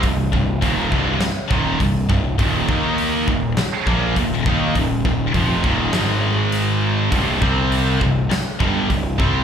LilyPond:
<<
  \new Staff \with { instrumentName = "Distorted electric guitar" } { \clef bass \time 4/4 \key c \minor \tempo 4 = 102 <c, g,>8 <c, g,>8 <ees, bes, ees>8 <c, g, c>8 r8 <ees, bes, ees>8 <c, g,>8 <c, g,>8 | <ees, bes, ees>8 <ees bes ees'>4 <ees, bes,>8 r8 <bes, f bes>8 <ees, bes,>8 <ees bes ees'>8 | <ees, bes,>8 <ees, bes,>8 <f, c f>8 <ees, bes, ees>8 <aes, ees aes>2 | <c, g, c>8 <c g c'>4 <c, g,>8 r8 <g, d g>8 <c, g,>8 <c g c'>8 | }
  \new Staff \with { instrumentName = "Distorted electric guitar" } { \clef bass \time 4/4 \key c \minor <c, g,>8 <c, g,>8 <ees, bes, ees>8 <c, g, c>8 r8 <ees, bes, ees>8 <c, g,>8 <c, g,>8 | <ees, bes, ees>8 <ees bes ees'>4 <ees, bes,>8 r8 <bes, f bes>8 <ees, bes,>8 <ees bes ees'>8 | <ees, bes,>8 <ees, bes,>8 <f, c f>8 <ees, bes, ees>8 <aes, ees aes>2 | <c, g, c>8 <c g c'>4 <c, g,>8 r8 <g, d g>8 <c, g,>8 <c g c'>8 | }
  \new Staff \with { instrumentName = "Picked electric bass" } { \clef bass \time 4/4 \key c \minor c,,8 c,,8 ees,,8 c,,8 r8 ees,,8 c,,8 c,,8 | ees,,8 ees,4 ees,,8 r8 bes,,8 ees,,8 ees,8 | ees,,8 ees,,8 f,,8 ees,,8 aes,,2 | c,,8 c,4 c,,8 r8 g,,8 c,,8 c,8 | }
  \new DrumStaff \with { instrumentName = "Drums" } \drummode { \time 4/4 <hho bd>8 bd8 <hho bd>8 bd8 <hho sn>8 bd8 <hho bd>8 bd8 | <hho bd>8 bd8 hho8 bd8 <hho sn>8 bd8 <hho bd>8 bd8 | <hho bd>8 bd8 <hho bd>8 bd8 <hho sn>4 hho4 | <hho bd>8 bd8 hho8 bd8 <hho sn>8 bd8 <hho bd>8 bd8 | }
>>